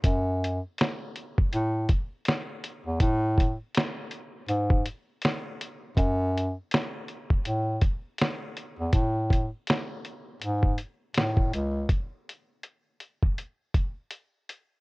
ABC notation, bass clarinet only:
X:1
M:4/4
L:1/16
Q:"Swing 16ths" 1/4=81
K:F#m
V:1 name="Bass clarinet" clef=bass
F,,3 z4 z A,,2 z4 z E,, | A,,3 z4 z G,,2 z6 | F,,3 z4 z A,,2 z4 z E,, | A,,3 z4 z G,,2 z2 A,,2 C,,2 |
z16 |]